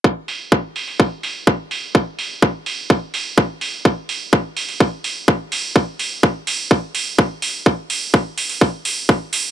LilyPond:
\new DrumStaff \with { instrumentName = "Drums" } \drummode { \time 4/4 \tempo 4 = 126 bd8 hho8 bd8 hho16 hho16 bd8 hho8 bd8 hho8 | bd8 hho8 bd8 hho8 bd8 hho8 bd8 hho8 | bd8 hho8 bd8 hho16 hho16 bd8 hho8 bd8 hho8 | bd8 hho8 bd8 hho8 bd8 hho8 bd8 hho8 |
bd8 hho8 bd8 hho16 hho16 bd8 hho8 bd8 hho8 | }